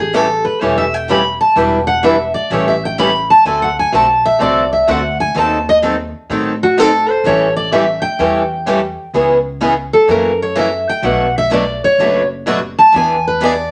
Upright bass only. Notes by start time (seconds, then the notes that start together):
Already playing: A1
0.62 E1
1.56 E1
2.50 A1
3.45 D2
3.92 B1
4.40 C2
4.88 D2
5.35 D#2
6.29 A2
7.24 A1
8.19 E2
9.14 C#2
10.08 F#2
11.02 B1
11.98 F#1
12.94 E2